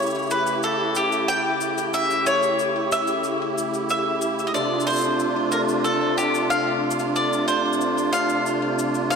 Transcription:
0.00 4.50 C#3 medium
0.00 9.16 A3 medium
0.00 4.50 E4 medium
0.00 4.51 G4 medium
0.00 0.27 C#5 medium
0.00 cabasa soft
0.06 cabasa soft
0.10 cabasa soft
0.15 cabasa soft
0.18 cabasa soft
0.22 cabasa soft
0.26 cabasa soft
0.30 0.63 B4 medium
0.30 cabasa medium
0.47 cabasa soft
0.63 0.97 A4 medium
0.63 cabasa soft
0.95 1.30 G4 medium
0.95 cabasa medium
1.12 cabasa soft
1.28 1.93 G5 loud
1.28 cabasa soft
1.61 cabasa medium
1.78 cabasa medium
1.94 2.24 E5 medium
1.94 cabasa soft
2.10 cabasa soft
2.26 2.92 C#5 medium
2.26 cabasa medium
2.43 cabasa soft
2.59 cabasa soft
2.92 3.89 E5 loud
2.92 cabasa medium
3.07 cabasa soft
3.24 cabasa soft
3.58 cabasa medium
3.74 cabasa soft
3.89 4.47 E5 medium
3.89 cabasa medium
4.22 cabasa medium
4.39 cabasa soft
4.47 4.54 D#5 medium
4.54 9.16 C3 medium
4.54 9.16 D4 medium
4.54 9.16 F4 medium
4.54 4.86 D5 medium
4.54 cabasa soft
4.80 cabasa soft
4.87 5.51 C5 medium
4.87 cabasa soft
4.90 cabasa soft
4.93 cabasa soft
4.96 cabasa soft
4.98 cabasa medium
5.01 cabasa medium
5.03 cabasa soft
5.20 cabasa medium
5.52 5.61 A#4 medium
5.52 cabasa medium
5.69 cabasa soft
5.84 6.15 A4 medium
5.84 cabasa soft
6.18 6.51 G4 medium
6.18 cabasa medium
6.35 cabasa soft
6.50 7.17 F5 medium
6.50 cabasa medium
6.91 cabasa medium
6.99 cabasa soft
7.16 7.47 D5 medium
7.16 cabasa soft
7.33 cabasa soft
7.48 8.15 C5 medium
7.48 cabasa medium
7.73 cabasa soft
7.81 cabasa soft
7.98 cabasa soft
8.13 9.09 F5 medium
8.13 cabasa medium
8.29 cabasa soft
8.46 cabasa medium
8.79 cabasa medium
8.94 cabasa soft
9.10 9.16 F5 medium
9.10 cabasa medium

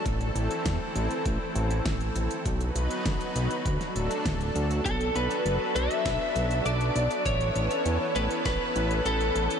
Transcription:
0.00 2.42 A3 medium
0.00 2.42 A4 medium
0.06 0.31 A1 loud
0.06 2.43 E3 medium
0.06 2.43 C4 medium
0.06 kick loud
0.06 closed hi-hat medium
0.21 closed hi-hat soft
0.36 0.48 A1 loud
0.36 closed hi-hat medium
0.51 closed hi-hat soft
0.66 0.78 E2 loud
0.66 kick loud
0.66 snare loud
0.66 closed hi-hat medium
0.96 1.08 A1 loud
0.96 closed hi-hat medium
1.11 closed hi-hat soft
1.26 1.38 A1 medium
1.26 kick loud
1.26 closed hi-hat medium
1.55 1.81 A1 loud
1.55 closed hi-hat medium
1.71 closed hi-hat medium
1.86 2.11 A1 medium
1.86 kick loud
1.86 snare loud
1.86 closed hi-hat medium
2.01 closed hi-hat soft
2.16 2.28 A1 medium
2.16 closed hi-hat medium
2.31 closed hi-hat medium
2.46 2.71 B1 loud
2.46 4.83 F#3 medium
2.46 3.64 B3 medium
2.46 3.64 D#4 medium
2.46 3.65 B4 medium
2.46 kick loud
2.46 closed hi-hat medium
2.61 closed hi-hat soft
2.76 2.88 B1 loud
2.76 closed hi-hat medium
2.91 closed hi-hat medium
3.06 3.18 F#1 loud
3.06 kick loud
3.06 snare loud
3.06 closed hi-hat medium
3.21 closed hi-hat soft
3.36 3.48 B1 loud
3.36 closed hi-hat medium
3.51 closed hi-hat medium
3.66 3.78 D2 medium
3.66 4.84 A3 medium
3.66 4.84 D4 medium
3.66 4.84 A4 medium
3.66 kick loud
3.66 closed hi-hat medium
3.81 snare soft
3.81 closed hi-hat soft
3.96 4.08 D1 loud
3.96 closed hi-hat medium
4.11 closed hi-hat medium
4.26 4.51 D1 loud
4.26 kick loud
4.26 snare loud
4.26 closed hi-hat medium
4.41 closed hi-hat soft
4.56 4.81 D2 loud
4.56 closed hi-hat medium
4.71 closed hi-hat medium
4.86 5.11 B1 loud
4.86 7.23 F#3 medium
4.86 9.60 B3 medium
4.86 7.23 D4 medium
4.86 5.16 A4 loud
4.86 7.23 A4 medium
4.86 5.17 A4 medium
4.86 kick loud
4.86 closed hi-hat medium
5.01 closed hi-hat soft
5.16 5.28 B1 loud
5.16 5.75 B4 medium
5.16 5.77 B4 loud
5.16 closed hi-hat medium
5.31 closed hi-hat medium
5.46 5.58 F#1 loud
5.46 closed hi-hat medium
5.76 5.88 B1 loud
5.76 6.68 E5 loud
5.76 6.65 E5 loud
5.76 closed hi-hat medium
5.91 closed hi-hat soft
6.06 6.18 B1 medium
6.06 kick loud
6.06 snare loud
6.06 closed hi-hat medium
6.36 6.61 B1 loud
6.36 closed hi-hat medium
6.51 closed hi-hat medium
6.66 6.91 B1 medium
6.66 7.27 D5 loud
6.66 7.25 D5 loud
6.66 closed hi-hat medium
6.81 closed hi-hat soft
6.96 7.08 B1 medium
6.96 closed hi-hat medium
7.11 closed hi-hat medium
7.26 7.51 A1 loud
7.26 9.60 E3 medium
7.26 9.60 C#4 medium
7.26 9.60 A4 medium
7.26 8.18 C#5 loud
7.26 kick loud
7.26 closed hi-hat medium
7.41 closed hi-hat soft
7.56 7.68 A1 medium
7.56 closed hi-hat medium
7.71 closed hi-hat medium
7.86 7.98 E2 loud
7.86 closed hi-hat medium
8.16 8.28 A1 loud
8.16 8.29 B4 loud
8.16 8.24 B4 medium
8.16 closed hi-hat medium
8.31 closed hi-hat medium
8.45 8.58 A1 medium
8.45 9.02 B4 loud
8.45 9.02 B4 medium
8.45 kick loud
8.45 snare loud
8.45 closed hi-hat medium
8.76 9.01 A1 loud
8.76 closed hi-hat medium
8.91 closed hi-hat medium
9.05 9.31 A1 medium
9.05 9.48 A4 loud
9.05 9.48 A4 medium
9.05 closed hi-hat medium
9.21 closed hi-hat soft
9.36 9.48 A1 medium
9.36 closed hi-hat medium
9.51 closed hi-hat medium

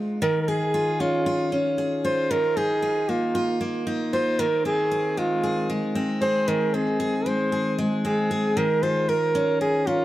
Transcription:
0.00 0.20 G#3 medium
0.00 0.20 F4 medium
0.22 2.30 D#3 medium
0.22 0.41 A#4 loud
0.42 0.50 A#4 medium
0.48 1.77 G#4 medium
0.48 1.02 G#4 medium
0.74 1.26 F4 medium
1.00 1.51 C#4 medium
1.00 1.52 F4 medium
1.26 2.04 F4 medium
1.52 2.36 C#4 medium
1.78 2.36 G#4 medium
2.04 2.60 F4 medium
2.04 2.32 C5 loud
2.31 4.39 D#3 medium
2.31 2.58 A#4 loud
2.57 3.86 D#4 medium
2.57 3.11 G#4 loud
2.82 3.34 F4 medium
3.09 3.59 A#3 medium
3.09 3.61 F4 medium
3.35 4.12 F4 medium
3.61 4.45 A#3 medium
3.87 4.65 D#4 medium
4.13 4.45 F4 medium
4.13 4.41 C5 loud
4.39 6.48 D#3 medium
4.39 4.66 A#4 loud
4.65 5.95 C4 medium
4.65 5.20 G#4 loud
4.91 5.43 G#4 medium
5.17 5.69 G#3 medium
5.17 5.70 F4 medium
5.44 6.21 G#4 medium
5.70 7.26 G#3 medium
5.95 6.73 C4 medium
6.22 6.99 G#4 medium
6.22 6.50 C5 loud
6.48 8.56 D#3 medium
6.48 6.76 A#4 loud
6.74 8.03 C4 medium
6.74 7.29 G#4 medium
7.00 7.52 G#4 medium
7.26 7.78 G#3 medium
7.26 7.79 C5 medium
7.52 8.30 G#4 medium
7.79 9.12 G#3 medium
8.05 8.63 C4 medium
8.05 8.59 G#4 medium
8.31 9.08 G#4 medium
8.57 10.05 D#3 medium
8.57 8.84 A#4 medium
8.83 10.05 F4 medium
8.83 9.11 C5 loud
9.09 9.61 A#4 medium
9.35 9.86 C#4 medium
9.61 9.89 G#4 loud
9.61 10.05 A#4 medium
9.87 10.05 C#4 medium
9.87 10.05 F4 medium

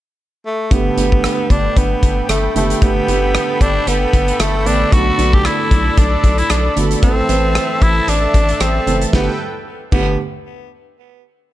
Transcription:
0.46 0.74 A3 medium
0.71 0.90 G1 loud
0.71 0.95 D3 medium
0.71 0.95 A3 medium
0.71 0.96 B3 medium
0.71 1.52 B3 medium
0.71 0.96 G4 medium
0.71 9.09 A4 medium
0.71 4.88 G5 medium
0.71 6.99 B5 medium
0.71 kick loud
0.71 closed hi-hat medium
0.97 1.27 G1 loud
0.97 1.94 D3 medium
0.97 1.95 A3 medium
0.97 1.95 B3 medium
0.97 1.95 G4 medium
0.97 closed hi-hat medium
1.12 kick medium
1.24 cross-stick loud
1.24 closed hi-hat medium
1.50 1.69 G1 medium
1.50 1.79 D4 medium
1.50 kick medium
1.50 closed hi-hat medium
1.77 1.95 G1 medium
1.77 2.29 B3 medium
1.77 kick medium
1.77 closed hi-hat medium
2.03 2.22 G1 medium
2.03 kick medium
2.03 closed hi-hat medium
2.29 2.48 G1 medium
2.29 2.54 A3 medium
2.29 cross-stick loud
2.29 closed hi-hat loud
2.55 2.74 F#1 medium
2.55 2.80 D3 medium
2.55 2.80 A3 medium
2.55 2.80 B3 medium
2.55 2.80 G4 medium
2.55 closed hi-hat medium
2.70 closed hi-hat medium
2.81 3.01 G1 loud
2.81 3.06 D3 medium
2.81 3.06 A3 medium
2.81 3.06 B3 medium
2.81 3.63 B3 medium
2.81 3.06 G4 medium
2.81 kick loud
2.81 closed hi-hat medium
3.08 3.37 G1 loud
3.08 4.05 D3 medium
3.08 4.05 A3 medium
3.08 4.05 B3 medium
3.08 4.06 G4 medium
3.08 closed hi-hat medium
3.35 cross-stick loud
3.35 closed hi-hat medium
3.61 3.80 G1 medium
3.61 3.89 D4 medium
3.61 kick medium
3.61 closed hi-hat medium
3.87 4.06 G1 loud
3.87 4.42 B3 medium
3.87 closed hi-hat medium
4.13 4.32 G1 loud
4.13 kick medium
4.13 closed hi-hat medium
4.28 closed hi-hat soft
4.40 4.68 G1 medium
4.40 4.68 A3 medium
4.40 cross-stick loud
4.40 closed hi-hat loud
4.66 4.85 A1 medium
4.66 4.90 D3 medium
4.66 4.90 A3 medium
4.66 4.90 B3 medium
4.66 4.94 D4 medium
4.66 4.91 D4 medium
4.66 closed hi-hat medium
4.92 5.11 B1 loud
4.92 5.16 D3 medium
4.92 5.17 A3 medium
4.92 5.17 B3 medium
4.92 5.35 F#4 loud
4.92 5.17 F#4 medium
4.92 7.01 D5 medium
4.92 kick loud
4.92 closed hi-hat medium
5.18 5.48 B1 loud
5.18 6.15 D3 medium
5.18 6.16 A3 medium
5.18 6.16 B3 medium
5.18 6.16 F#4 medium
5.18 closed hi-hat medium
5.33 5.47 G4 medium
5.33 kick medium
5.45 5.99 E4 medium
5.45 cross-stick loud
5.45 closed hi-hat medium
5.71 5.90 B1 medium
5.71 kick medium
5.71 closed hi-hat medium
5.98 6.17 B1 loud
5.98 6.40 D4 medium
5.98 kick medium
5.98 closed hi-hat medium
6.24 6.43 B1 loud
6.24 kick medium
6.24 closed hi-hat medium
6.38 6.52 E4 medium
6.38 closed hi-hat soft
6.50 6.69 B1 medium
6.50 6.77 D4 medium
6.50 cross-stick loud
6.50 closed hi-hat loud
6.76 6.96 G1 loud
6.76 7.01 D3 medium
6.76 7.01 A3 medium
6.76 7.01 B3 medium
6.76 7.01 F#4 medium
6.76 closed hi-hat medium
6.91 closed hi-hat soft
7.02 7.22 A1 loud
7.02 7.27 E3 medium
7.02 7.27 A3 medium
7.02 7.27 C4 medium
7.02 7.84 C4 medium
7.02 7.27 A4 medium
7.02 9.11 E5 medium
7.02 9.11 A5 medium
7.02 kick loud
7.02 closed hi-hat medium
7.29 7.59 A1 loud
7.29 8.26 E3 medium
7.29 8.26 A3 medium
7.29 8.26 C4 medium
7.29 8.27 B4 medium
7.29 closed hi-hat medium
7.55 cross-stick loud
7.55 closed hi-hat medium
7.82 8.01 A1 loud
7.82 8.10 E4 medium
7.82 kick medium
7.82 closed hi-hat medium
8.08 8.27 A1 medium
8.08 8.63 D4 medium
8.08 closed hi-hat medium
8.34 8.53 A1 medium
8.34 kick medium
8.34 closed hi-hat medium
8.49 closed hi-hat soft
8.60 8.80 A1 medium
8.60 9.02 C4 medium
8.60 cross-stick loud
8.60 closed hi-hat medium
8.86 9.06 F#1 medium
8.86 9.11 E3 medium
8.86 9.11 A3 medium
8.86 9.11 C4 medium
8.86 9.12 A4 medium
8.86 closed hi-hat medium
9.02 closed hi-hat medium
9.13 9.29 G1 medium
9.13 9.29 D3 medium
9.13 9.29 A3 medium
9.13 9.29 B3 medium
9.13 9.29 G4 medium
9.13 9.38 A4 medium
9.13 9.38 B4 medium
9.13 9.38 G5 medium
9.13 kick loud
9.13 snare medium
9.92 10.17 G1 medium
9.92 10.17 D3 medium
9.92 10.17 A3 medium
9.92 10.17 B3 medium
9.92 10.17 G4 medium
9.92 kick loud
9.92 crash medium

